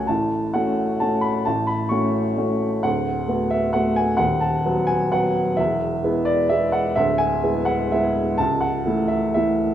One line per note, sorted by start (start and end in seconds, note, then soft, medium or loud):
0.00 0.11 C#1 soft
0.00 0.10 C#2 soft
0.00 0.11 A3 soft
0.00 0.11 C#4 soft
0.00 0.11 F#4 soft
0.00 0.11 F#5 medium
0.00 0.11 G#5 medium
0.00 0.07 A5 medium
0.07 0.53 A1 soft
0.07 0.53 A2 soft
0.07 0.53 A5 medium
0.54 0.98 A3 soft
0.54 0.98 C#4 soft
0.54 0.98 F#4 soft
0.54 1.01 F#5 medium
1.00 1.43 A3 soft
1.00 1.43 C#4 soft
1.00 1.43 F#4 soft
1.00 1.24 A5 medium
1.21 1.45 B5 medium
1.45 1.90 A1 soft
1.45 1.90 A2 soft
1.45 1.68 A5 medium
1.67 1.90 B5 medium
1.89 2.34 A3 soft
1.89 2.34 C#4 soft
1.89 2.34 F#4 soft
1.89 2.37 C#6 medium
2.37 2.79 A3 soft
2.37 2.79 C#4 soft
2.37 2.80 F#4 soft
2.83 3.28 D1 soft
2.83 3.28 D2 soft
2.83 3.51 F#5 medium
3.28 3.70 A3 soft
3.28 3.71 B3 soft
3.28 3.71 F#4 soft
3.50 3.74 E5 medium
3.73 4.16 A3 soft
3.73 4.16 B3 soft
3.73 4.16 F#4 soft
3.73 3.97 F#5 medium
3.96 4.19 G#5 medium
4.17 4.63 D#1 soft
4.17 4.63 D#2 soft
4.17 4.41 F#5 medium
4.41 4.88 A5 medium
4.65 5.09 F#3 soft
4.65 5.09 B3 soft
4.65 5.10 F#4 soft
4.87 5.12 G#5 medium
5.12 5.55 F#3 soft
5.12 5.55 B3 soft
5.12 5.55 F#4 soft
5.12 5.58 F#5 medium
5.57 6.02 E1 soft
5.57 6.02 E2 soft
5.57 6.26 E5 medium
6.04 6.47 G#3 soft
6.04 6.47 B3 soft
6.04 6.47 E4 soft
6.25 6.50 D5 medium
6.49 6.93 G#3 soft
6.49 6.93 B3 soft
6.49 6.93 E4 soft
6.49 6.74 E5 medium
6.72 6.96 F#5 medium
6.96 7.42 D1 soft
6.96 7.42 D2 soft
6.96 7.19 E5 medium
7.18 7.67 G#5 medium
7.44 7.88 G#3 soft
7.44 7.88 B3 soft
7.44 7.89 E4 soft
7.65 7.91 F#5 medium
7.92 8.36 G#3 soft
7.92 8.36 B3 soft
7.92 8.36 E4 soft
7.92 8.39 E5 medium
8.38 8.84 C#1 soft
8.38 8.84 C#2 soft
8.38 8.61 A5 medium
8.61 9.09 F#5 medium
8.86 9.30 E3 soft
8.86 9.30 A3 soft
8.86 9.30 E4 soft
9.08 9.33 E5 medium
9.34 9.74 E3 soft
9.34 9.74 A3 soft
9.34 9.74 E4 soft
9.34 9.74 E5 medium